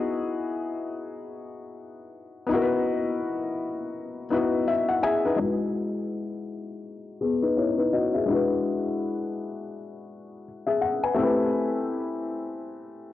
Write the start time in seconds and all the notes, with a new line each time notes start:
Already playing: B3 D#4 E4 F#4 G#4
2.46 B3 D#4
2.51 E4 F#4 A#4
2.62 B4
4.30 B3 D#4 E4 F#4
4.34 B4
4.68 E5
4.89 F#5
5.03 G#4 E5 G#5
5.25 D#4 B4
5.36 G#3 D#4
5.41 E4 F#4
5.45 B4
7.21 B3 G#4
7.42 D#4 B4
7.57 E4 C#5
7.78 D#4 B4
7.93 F#4 D#5
8.14 G#4 E5
8.26 G#3 D4
8.30 E4 F#4
8.34 B4
10.66 G#4 E5
10.81 F#5
11.03 B4 G#5
11.14 A3 C4
11.19 E4 G4
11.23 B4